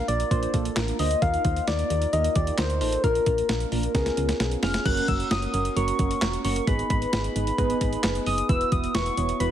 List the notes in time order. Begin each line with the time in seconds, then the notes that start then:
0.08 A#1 A#3 D4 F4 A#4 D5, closed hi-hat
0.20 closed hi-hat
0.31 A#1 A#3 D4 F4 C5, kick, closed hi-hat
0.43 closed hi-hat
0.54 A#1 A#3 D4 F4 A4, kick, closed hi-hat
0.65 closed hi-hat
0.77 A1 A#3 D4 F4 A#4, snare, clap, closed hi-hat
0.88 closed hi-hat
0.99 D2 A#3 D4 F4 C5 D#5, open hi-hat
1.11 closed hi-hat
1.22 D#2 A#3 D#4 F4 A#4 F5, kick, closed hi-hat
1.34 closed hi-hat
1.45 D#2 A#3 D#4 F4 C5, kick, closed hi-hat
1.56 closed hi-hat
1.67 D#2 A#3 D#4 F4 A#4 D5, snare, closed hi-hat
1.79 closed hi-hat
1.90 D#2 A#3 D#4 F4 A#4, closed hi-hat
2.02 closed hi-hat
2.13 D#2 A#3 D#4 F4 A#4 D#5, closed hi-hat
2.24 closed hi-hat
2.36 D#2 A#3 D#4 F4 G4 D5, kick, closed hi-hat
2.47 closed hi-hat
2.58 D2 A#3 D#4 F4 A#4 C5, snare, clap, closed hi-hat
2.70 closed hi-hat
2.81 A1 A#3 D#4 F4 A4 C5, open hi-hat
2.92 closed hi-hat
3.04 A#1 A#3 D4 F4 A#4, kick, closed hi-hat
3.15 closed hi-hat
3.26 A#1 A#3 D4 F4 A#4, kick, closed hi-hat
3.38 closed hi-hat
3.49 A#1 A#3 D4 F4 A#4, snare, closed hi-hat
3.60 closed hi-hat
3.72 A#1 A#3 D4 F4 A#4, open hi-hat
3.83 closed hi-hat
3.95 C#2 B3 C#4 F4 G#4 A#4, kick, snare, closed hi-hat
4.06 snare, closed hi-hat
4.17 C#2 B3 C#4 F4 G#4, closed hi-hat
4.29 snare, closed hi-hat
4.40 B1 B3 C#4 F4 G#4, snare, closed hi-hat
4.51 closed hi-hat
4.63 F1 B3 C#4 F4 G#4 F6, snare, open hi-hat
4.74 snare, closed hi-hat
4.85 F#1 A#3 C#4 F#4 A#4 F#6, kick, closed hi-hat, crash
4.97 closed hi-hat
5.08 F#1 A#3 C#4 F#4 A#4 E6, kick, closed hi-hat
5.20 closed hi-hat
5.31 F#1 A#3 C#4 F#4 A#4 D#6, snare, closed hi-hat
5.42 closed hi-hat
5.54 F#1 A#3 C#4 F#4 A#4, closed hi-hat
5.65 closed hi-hat
5.76 F#1 A#3 C#4 F#4 A#4 C#6, closed hi-hat
5.88 closed hi-hat
5.99 F#1 A#3 C#4 F#4 A#4, kick, closed hi-hat
6.11 closed hi-hat
6.22 E1 A#3 C#4 F#4 A#4, snare, clap, closed hi-hat
6.33 closed hi-hat
6.45 F#1 A#3 C#4 F#4 A#4 C#6, open hi-hat
6.56 closed hi-hat
6.67 G#1 B3 D#4 G#4 B4 B5, kick, closed hi-hat
6.79 closed hi-hat
6.90 G#1 B3 D#4 G#4 B4 B5, kick, closed hi-hat
7.02 closed hi-hat
7.13 G#1 B3 D#4 G#4 B4, snare, closed hi-hat
7.24 closed hi-hat
7.36 G#1 B3 D#4 G#4 B4, closed hi-hat
7.47 closed hi-hat
7.58 G#1 B3 D#4 G#4 B4, kick, closed hi-hat
7.70 closed hi-hat
7.81 G#1 B3 D#4 G#4 B4, kick, closed hi-hat
7.93 closed hi-hat
8.04 F#1 B3 D#4 G#4 B4, snare, clap, closed hi-hat
8.15 closed hi-hat
8.26 F#1 B3 D#4 G#4 B4 D#6, open hi-hat
8.38 closed hi-hat
8.49 E1 B3 E4 F#4 B4 E6, kick, closed hi-hat
8.61 closed hi-hat
8.72 E1 B3 E4 F#4 B4 D#6, kick, closed hi-hat
8.84 closed hi-hat
8.95 E1 B3 E4 F#4 B4 C#6, snare, closed hi-hat
9.06 closed hi-hat
9.17 E1 B3 E4 F#4 C#5, closed hi-hat
9.29 closed hi-hat
9.40 E1 B3 E4 F#4 B4 B5, closed hi-hat